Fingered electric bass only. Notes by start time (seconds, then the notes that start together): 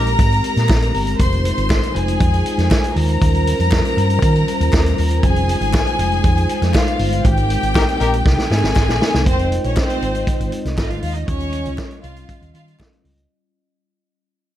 Already playing: A#1
0.19 G#2
0.56 A#2
0.70 A#1
0.94 G1
1.20 F1
1.57 G#1
1.95 F1
2.20 F2
2.58 F2
2.96 D#2
3.22 D#2
3.59 F2
3.97 G2
4.23 D#3
4.60 D#2
4.73 D#2
4.99 D#2
5.23 F1
5.60 G#1
5.99 F1
6.24 F2
6.62 F2
6.99 G1
7.25 G#1
7.63 G#1
8.01 A#1
8.26 C2
8.51 G#2
8.63 G#1
8.76 G#1
8.88 A#1
9.14 C2
9.27 F1
9.65 A#1
10.02 G#1
10.40 G#1
10.65 C2
10.78 G#1
11.03 D#2
11.28 D#2
11.66 C#2
12.03 C2
12.42 D#2
12.54 D#3
13.04 C#2